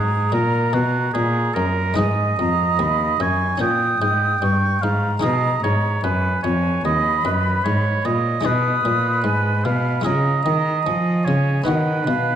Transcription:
0.00 0.29 G#2 medium
0.00 0.34 G#2 medium
0.00 1.94 D#4 medium
0.00 1.94 F#4 medium
0.00 0.33 G#4 medium
0.00 1.66 A#5 medium
0.32 0.70 A#2 medium
0.32 0.76 A#2 medium
0.32 0.76 A#4 medium
0.73 1.11 B2 medium
0.73 1.15 B2 medium
0.73 1.13 F#4 medium
1.14 1.53 A#2 medium
1.14 1.56 A#2 medium
1.14 1.56 G#4 medium
1.55 1.95 F#2 medium
1.55 2.01 F#2 medium
1.55 1.98 A#4 medium
1.94 3.55 G#3 medium
1.94 3.56 D#4 medium
1.94 3.56 B4 medium
1.94 3.23 D#5 loud
1.99 2.36 G#2 medium
1.99 2.40 G#2 medium
1.99 2.37 G#5 medium
2.39 2.76 F2 medium
2.39 2.81 F2 medium
2.39 2.82 A#5 medium
2.79 3.16 D#2 medium
2.79 3.20 D#2 medium
2.79 3.21 B5 medium
3.20 3.57 F#2 medium
3.20 3.60 F#2 medium
3.20 3.60 G#5 medium
3.20 3.61 C#6 medium
3.58 4.00 A#2 medium
3.58 3.97 A#2 medium
3.58 5.17 C#4 soft
3.58 5.18 A#4 soft
3.58 4.01 G5 loud
3.58 4.45 D#6 medium
4.00 4.40 G#2 medium
4.00 4.38 G#2 medium
4.00 4.83 G5 medium
4.41 4.81 G2 medium
4.41 4.78 G2 medium
4.41 4.85 C#6 medium
4.82 5.22 G#2 medium
4.82 5.19 G#2 medium
4.82 5.11 F5 medium
4.82 6.06 A#5 medium
5.20 5.62 B2 medium
5.20 8.39 G#3 medium
5.20 8.40 D#4 medium
5.20 8.40 G#4 medium
5.20 5.62 D#5 medium
5.24 5.60 B2 medium
5.63 6.03 G#2 medium
5.63 6.00 G#2 medium
5.63 6.03 C#5 medium
6.03 6.43 F#2 medium
6.03 6.40 F#2 medium
6.03 6.42 B4 medium
6.03 6.86 G#5 medium
6.43 6.81 F2 medium
6.43 6.84 F2 medium
6.43 6.83 C#5 medium
6.85 7.24 D#2 medium
6.85 7.21 D#2 medium
6.85 7.24 D#5 loud
6.85 8.17 B5 medium
7.25 7.61 F#2 medium
7.25 7.65 F#2 medium
7.25 7.66 B4 medium
7.64 8.04 G#2 medium
7.64 8.01 G#2 medium
7.64 8.07 C#5 medium
8.05 8.41 A#2 medium
8.05 8.44 A#2 medium
8.05 8.47 D#5 medium
8.41 8.84 B2 medium
8.41 9.99 G#3 medium
8.41 10.00 D#4 medium
8.41 10.01 G#4 medium
8.41 9.21 D#6 medium
8.45 8.81 B2 medium
8.45 9.66 B4 medium
8.85 9.27 A#2 medium
8.85 9.21 A#2 medium
9.24 9.61 G#2 medium
9.24 9.67 G#2 medium
9.24 9.64 G#5 medium
9.65 10.01 B2 medium
9.65 10.05 B2 medium
9.65 10.06 F5 medium
9.65 10.04 B5 medium
10.01 10.42 G#3 soft
10.01 11.61 F4 soft
10.01 11.62 G#4 soft
10.01 10.43 D#5 medium
10.01 10.88 A#5 medium
10.06 10.42 C#3 medium
10.06 10.45 C#3 medium
10.43 10.85 D#3 medium
10.43 10.82 D#3 medium
10.43 11.26 D#5 medium
10.86 11.22 F3 medium
10.86 11.28 F3 medium
10.86 11.65 G#5 medium
11.25 11.66 C#3 medium
11.25 11.63 C#3 medium
11.25 11.63 C#5 medium
11.64 12.08 D#3 medium
11.64 12.36 B3 soft
11.64 12.36 D#4 medium
11.64 12.36 F#4 soft
11.64 12.36 B4 loud
11.64 12.06 F#5 medium
11.68 12.04 D#3 medium
12.06 12.36 B2 medium
12.06 12.36 F5 medium

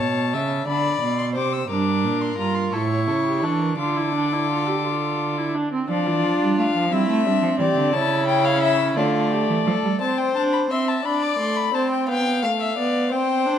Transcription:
0.00 0.35 B2 medium
0.00 0.35 C#5 medium
0.00 0.66 A5 medium
0.33 0.67 C#3 medium
0.33 0.66 E5 medium
0.67 1.01 D3 medium
0.67 1.34 D5 loud
0.67 1.18 B5 medium
1.02 1.37 B2 medium
1.18 1.25 C6 medium
1.35 1.69 C3 medium
1.35 1.69 C5 medium
1.35 1.54 D6 medium
1.53 1.69 E6 medium
1.70 2.06 G2 medium
1.70 2.34 D4 medium
1.70 2.74 A#4 medium
1.70 2.23 D6 medium
2.04 2.38 A#2 medium
2.21 2.37 C6 medium
2.38 2.72 G2 medium
2.38 2.74 F4 medium
2.38 2.56 A#5 medium
2.55 2.72 C6 medium
2.72 3.09 A2 medium
2.72 3.45 E4 medium
2.72 2.90 A4 medium
2.72 3.76 C#6 medium
2.90 3.07 C#5 medium
3.08 3.44 C#3 medium
3.08 3.15 A4 medium
3.25 3.44 G4 medium
3.43 3.78 E3 medium
3.43 3.78 D4 medium
3.43 3.63 A4 medium
3.61 3.78 A#4 medium
3.79 5.51 D3 medium
3.79 3.98 F4 medium
3.79 5.51 A4 medium
3.79 5.51 D6 medium
3.97 4.14 E4 medium
4.14 4.34 D4 medium
4.32 4.49 E4 medium
4.50 4.68 F4 medium
4.67 4.86 G4 medium
4.85 5.39 F4 medium
5.37 5.56 E4 medium
5.55 5.72 D4 medium
5.73 5.89 C4 medium
5.89 6.08 F3 medium
5.89 6.88 D4 medium
5.89 6.88 F4 medium
5.89 6.54 D5 medium
6.06 6.25 E3 medium
6.23 6.40 F3 medium
6.41 6.57 G3 medium
6.58 6.65 A3 medium
6.58 6.94 F5 loud
6.75 6.93 F3 medium
6.91 7.08 G3 medium
6.91 7.95 C4 medium
6.91 7.25 E4 medium
6.91 7.59 E5 loud
7.09 7.27 A3 medium
7.26 7.42 G3 medium
7.26 7.59 D4 medium
7.42 7.49 F3 medium
7.59 7.66 E3 medium
7.59 7.93 G4 medium
7.59 7.95 D5 medium
7.76 7.95 D3 medium
7.93 8.96 C#3 medium
7.93 8.98 C#4 medium
7.93 8.99 E4 loud
7.93 8.27 A5 loud
8.28 8.46 G5 medium
8.45 8.62 F5 loud
8.62 8.96 E5 loud
8.97 9.48 D3 medium
8.97 10.01 A3 medium
8.97 9.33 F4 medium
8.97 9.99 D5 medium
9.32 9.66 G4 medium
9.49 9.56 E3 medium
9.66 9.73 F3 medium
9.66 10.00 A4 medium
9.83 9.90 G3 medium
10.01 10.33 C4 medium
10.01 10.72 C5 loud
10.01 10.19 A5 medium
10.18 10.35 G5 medium
10.36 10.70 D4 medium
10.36 10.42 A5 medium
10.53 10.60 B5 medium
10.70 11.04 C4 medium
10.70 11.05 E5 medium
10.70 10.90 C6 medium
10.88 11.07 A5 medium
11.05 11.38 D4 medium
11.05 11.73 D5 loud
11.05 11.24 B5 medium
11.22 11.39 D6 medium
11.39 11.73 A3 medium
11.39 11.58 C6 medium
11.57 11.76 B5 medium
11.74 12.10 C4 medium
11.74 12.08 C5 medium
11.74 11.91 A5 medium
11.91 12.08 G5 medium
12.08 12.44 B3 medium
12.08 13.13 F5 medium
12.08 12.42 G5 loud
12.43 12.76 A3 medium
12.43 12.50 F5 loud
12.61 12.77 E5 medium
12.77 13.13 B3 medium
12.77 13.11 D5 medium
13.11 13.47 C4 medium
13.11 13.59 C5 loud
13.11 13.59 G5 medium
13.46 13.59 D4 medium

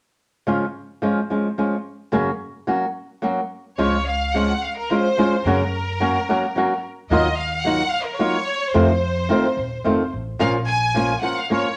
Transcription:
0.47 0.64 C#3 medium
0.47 0.64 F3 soft
0.47 0.64 G#3 soft
0.47 0.64 C#4 medium
0.47 0.64 F4 medium
1.02 1.19 F3 soft
1.02 1.19 G#3 soft
1.02 1.20 C#4 soft
1.02 1.20 F4 soft
1.30 1.47 F3 soft
1.30 1.47 G#3 soft
1.30 1.47 C#4 soft
1.30 1.48 F4 soft
1.58 1.75 F3 soft
1.58 1.75 G#3 soft
1.58 1.75 C#4 soft
1.58 1.75 F4 soft
2.12 2.29 F#2 medium
2.12 2.29 C#3 medium
2.12 2.29 F#3 medium
2.12 2.29 A#3 medium
2.12 2.30 C#4 medium
2.12 2.30 F#4 medium
2.67 2.84 F#3 soft
2.67 2.84 A#3 medium
2.67 2.85 C#4 medium
2.67 2.85 F#4 medium
3.22 3.39 F#3 soft
3.22 3.39 A#3 soft
3.22 3.40 C#4 medium
3.22 3.40 F#4 soft
3.78 4.51 C#2 medium
3.78 3.95 C#3 soft
3.78 3.95 F3 medium
3.78 3.96 G#3 medium
3.78 3.95 C#4 medium
3.78 3.96 F4 medium
3.78 4.04 C#5 medium
4.07 4.35 F5 medium
4.34 4.51 F3 soft
4.34 4.51 G#3 soft
4.34 4.51 C#4 medium
4.34 4.52 F4 medium
4.34 4.62 F#5 medium
4.64 4.77 F5 medium
4.77 4.89 A#4 medium
4.90 5.06 F3 soft
4.90 5.07 G#3 soft
4.90 5.07 C#4 soft
4.90 5.07 F4 soft
4.90 5.46 C5 medium
5.17 5.34 F3 soft
5.17 5.34 G#3 soft
5.17 5.34 C#4 medium
5.17 5.35 F4 medium
5.45 6.16 F#2 medium
5.45 5.62 F#2 soft
5.45 5.62 C#3 medium
5.45 5.62 F#3 medium
5.45 5.62 A#3 medium
5.45 5.62 C#4 medium
5.45 5.62 F#4 medium
5.45 6.83 A#4 medium
6.00 6.17 F#3 medium
6.00 6.17 A#3 soft
6.00 6.17 C#4 medium
6.00 6.17 F#4 medium
6.29 6.45 F#3 soft
6.29 6.45 A#3 soft
6.29 6.45 C#4 medium
6.29 6.45 F#4 medium
6.56 6.72 F#3 medium
6.56 6.72 A#3 medium
6.56 6.73 C#4 medium
6.56 6.73 F#4 medium
7.10 7.81 D#2 medium
7.10 7.27 D#3 soft
7.10 7.27 F#3 medium
7.10 7.27 A#3 medium
7.10 7.27 D#4 medium
7.10 7.27 F4 medium
7.10 7.36 D#5 medium
7.37 7.64 F5 medium
7.63 7.81 F#3 medium
7.63 7.81 A#3 soft
7.63 7.82 D#4 medium
7.63 7.82 F4 medium
7.63 7.91 F#5 medium
7.91 8.05 F5 medium
8.03 8.18 A#4 medium
8.16 8.35 F#3 soft
8.16 8.36 A#3 medium
8.16 8.36 D#4 medium
8.16 8.72 C#5 medium
8.21 8.36 F4 medium
8.71 8.90 F2 medium
8.71 9.28 F2 medium
8.71 8.90 C3 medium
8.71 8.91 D#3 medium
8.71 8.91 C4 medium
8.71 10.11 C5 medium
8.75 8.91 A3 medium
8.75 8.91 F4 medium
9.29 9.45 D#3 medium
9.29 9.46 A3 soft
9.29 9.46 C4 medium
9.29 9.46 F4 medium
9.57 9.82 D#1 medium
9.84 10.09 F1 medium
9.84 10.01 D#3 soft
9.84 10.01 A3 medium
9.84 10.02 C4 medium
9.84 10.02 F4 medium
10.13 10.38 A1 medium
10.39 11.11 A#1 medium
10.39 10.56 A#2 medium
10.39 10.57 F3 medium
10.39 10.56 A#3 medium
10.39 10.57 C#4 medium
10.39 10.57 F4 medium
10.39 10.52 F5 medium
10.67 11.18 G#5 medium
10.95 11.11 F3 medium
10.95 11.12 A#3 medium
10.95 11.12 C#4 medium
10.95 11.12 F4 medium
11.22 11.38 F3 soft
11.22 11.39 A#3 soft
11.22 11.39 C#4 soft
11.22 11.39 F4 medium
11.22 11.36 F#5 medium
11.39 11.51 F5 medium
11.50 11.66 F3 soft
11.50 11.66 A#3 medium
11.50 11.67 C#4 soft
11.50 11.67 F4 medium
11.50 11.76 C#5 medium

